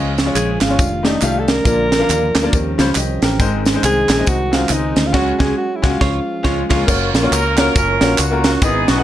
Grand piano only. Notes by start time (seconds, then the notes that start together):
Already playing: C#3 G#3 C#4 F4 D#5
0.25 G#3 C#4 F4 C#5
0.68 G#3 C#4 F4 C#5
1.03 A3 D#4 G4 D5
1.21 A3 D#4 G4 F5
1.64 A#2 A#3 D4 F4 D5
1.99 A#3 D4 F4 F5
2.43 A#3 D4 F4 D5
2.53 D#3
2.78 G3 C#4 F4 C5
2.97 G4 D#5
3.23 A#4 G5
3.39 G#2 G#3 C4 D#4 C5
3.74 G#3 C4 D#4 C5
4.17 G#3 C4 D#4 D#5
4.51 G#3 C4 D#4 F#4
4.69 G#3 C4 D#4 D#5
5.13 C#3 G#3 C#4 F#4 C#5
5.39 G#3 C#4 F#4
5.82 G#3 C#4 F#4
6.43 G#3 C#4 F4
6.69 G#3 C#4 F4
6.87 A#3 F4 F#4 C#5
7.22 A#3 F4 F#4 C#5
7.57 A#3 F4 F#4 C#5
8.01 A#3 F4 F#4 C#5
8.31 A#3 F4 F#4 A#4
8.61 G#2 B3 E4 G#4 D#5
8.96 B3 E4 G#4 F#5